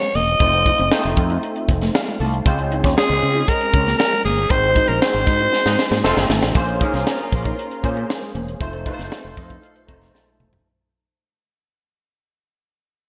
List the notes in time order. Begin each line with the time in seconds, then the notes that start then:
Already playing: A#3 C#4 F4 G#4 C5 C#5
0.01 G#3, closed hi-hat
0.15 E1 A#3 D#5, open hi-hat
0.28 closed hi-hat
0.40 F1 A3 C4 D#4 F4 C5, kick, closed hi-hat
0.53 muted clean electric guitar stroke, closed hi-hat
0.66 D#4, kick, closed hi-hat
0.78 F#1 C4, closed hi-hat
0.91 A3 C4 D#4 F4 C5, snare
1.04 F1, closed hi-hat
1.17 F2, muted clean electric guitar stroke, kick, closed hi-hat
1.30 D#4, closed hi-hat
1.43 muted clean electric guitar stroke, closed hi-hat
1.56 closed hi-hat
1.69 F1 C4, kick, closed hi-hat
1.81 A3, snare, closed hi-hat
1.94 F5, snare
2.07 G#3, closed hi-hat
2.20 C2 A3 A5, open hi-hat
2.34 closed hi-hat
2.45 C#2 G#3 C4 C#4 F4 C5, kick, closed hi-hat
2.59 muted clean electric guitar stroke, closed hi-hat
2.72 D#4, closed hi-hat
2.84 D#2 C#4, kick, snare, closed hi-hat
2.97 G#3 C4 C#4 F4 G#4, snare
3.09 C#2, closed hi-hat
3.22 C#3, muted clean electric guitar stroke, closed hi-hat
3.35 D#4, closed hi-hat
3.48 A#4, muted clean electric guitar stroke, kick, closed hi-hat
3.61 closed hi-hat
3.74 C#2 C#4, kick, closed hi-hat
3.87 A#3, snare, closed hi-hat
3.98 A#4, snare
4.12 G#3, closed hi-hat
4.25 G1 A#3 G#4, open hi-hat
4.38 closed hi-hat
4.50 G#1 G#3 C4 D#4 F#4 A#4 C5, kick, closed hi-hat
4.58 C5
4.63 muted clean electric guitar stroke, closed hi-hat
4.76 D#4, kick, closed hi-hat
4.88 A#1 C4 A#4, closed hi-hat
5.02 G#3 C4 D#4 F#4 C5, snare
5.14 G#1, closed hi-hat
5.27 G#2, muted clean electric guitar stroke, kick, open hi-hat
5.39 D#4, closed hi-hat
5.53 muted clean electric guitar stroke, snare
5.66 G#2 C4 D#4 F#4, snare
5.78 C4, snare
5.91 G#2 A#3, snare
6.03 F1 A3 C4 D#4 F4 A4 C5, snare
6.17 G1 G#3, snare
6.30 G#1 A3, snare
6.43 A1, snare
6.55 A#1 A#3 C#4 F4 G#4 A#4 C5, kick, closed hi-hat
6.68 muted clean electric guitar stroke, closed hi-hat
6.80 A#3 C#4 D#4 G#4 A#4, kick, closed hi-hat
6.94 C2 C#4, snare, closed hi-hat
7.07 C#4, snare
7.19 closed hi-hat
7.32 A#1, muted clean electric guitar stroke, kick, open hi-hat
7.45 D#4, kick, closed hi-hat
7.58 muted clean electric guitar stroke, closed hi-hat
7.71 closed hi-hat
7.83 A#2 A#3 C#4 G#4 C5, kick, closed hi-hat
7.96 A#3, closed hi-hat
8.09 muted clean electric guitar stroke, snare
8.22 G#3, closed hi-hat
8.35 E1 A#3, closed hi-hat
8.48 closed hi-hat
8.60 F1 A3 D#4 F4 A4 C5, kick, closed hi-hat
8.73 muted clean electric guitar stroke, closed hi-hat
8.85 A3 D#4 F4 B4, kick, closed hi-hat
8.93 C5
8.99 F#1 C4, snare, closed hi-hat
9.12 C4, snare
9.24 F1, closed hi-hat
9.37 F2 D#5, muted clean electric guitar stroke, kick, open hi-hat
9.50 D#4, kick, closed hi-hat
9.62 F5, muted clean electric guitar stroke, closed hi-hat
9.76 closed hi-hat
9.87 F1 A3 C4 D#4 F4 C5 A#5, kick, closed hi-hat
10.01 A3, snare, closed hi-hat
10.14 A5, snare
10.28 G#3
10.40 E1 A3, mid tom
10.53 floor tom